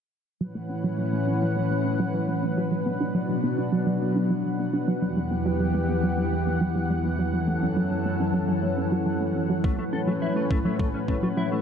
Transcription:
0.41 A2 E3 F#3 C#4 B4 F#5
0.55 A3
0.70 C#4
0.84 F#3
0.99 F#3
1.13 A3
1.27 C#4
1.42 F#3
1.56 F#3
1.71 A3
1.85 C#4
2.00 F#3
2.14 F#3
2.29 A3
2.43 C#4
2.57 F#3
2.72 B2 F#3 D4 F#5
2.86 B3
3.01 D4
3.15 F#3
3.29 F#3
3.44 B3
3.58 D4
3.72 F#3
3.87 F#3
4.01 B3
4.16 D4
4.30 F#3
4.45 F#3
4.59 B3
4.73 D4
4.88 F#3
5.02 E2 E3 F#3 B3 G4
5.17 G3
5.31 B3
5.46 F#3
5.60 F#3
5.75 G3
5.89 B3
6.04 F#3
6.18 F#3
6.32 G3
6.47 B3
6.61 F#3
6.76 F#3
6.90 G3
7.04 B3
7.19 F#3
7.33 F#2 F#3 C#4 A4
7.48 A3
7.62 C#4
7.77 F#3
7.91 F#3
8.06 A3
8.20 C#4
8.34 F#3
8.49 F#3
8.63 A3
8.78 C#4
8.92 F#3
9.06 F#3
9.21 A3
9.35 C#4
9.50 F#3
9.64 A2 F#3 A3 C#4 B4, kick
9.79 A3
9.93 C#4 A4
10.07 F#3 A3
10.22 F#3 E4
10.36 A3
10.51 A3 C#4, kick
10.65 F#3 A3
10.79 F#3 A3, kick
10.94 A3 C#4
11.08 A3 C#4, kick
11.23 F#3 A3
11.37 F#3 E4
11.52 A3

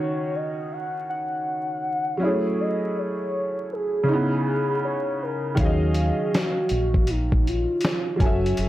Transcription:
Already playing: D#3 C#4 D#4 F#4 C#5
0.35 D#5
0.72 F#5
1.09 F#5
2.17 F#3 C#4
2.22 E4 G#4 C#5
2.27 A3
2.60 D#5
2.98 C#5
3.73 G#4
4.04 C#3 C#4
4.08 D#4 E4
4.13 B3
4.85 C#5
5.23 A#4
5.55 D#2 D#3 C#4, kick, closed hi-hat
5.60 F#3 G#4 F5
5.65 D#5
5.94 closed hi-hat
6.34 F#4, snare, closed hi-hat
6.69 A#1, closed hi-hat
6.94 kick
7.07 D#4, closed hi-hat
7.32 kick
7.47 F4, closed hi-hat
7.81 snare, closed hi-hat
8.16 F#3 C#4, kick
8.20 F#1 F#4 A4 G#5, closed hi-hat
8.26 E5
8.46 closed hi-hat
8.57 F#1 A4, closed hi-hat

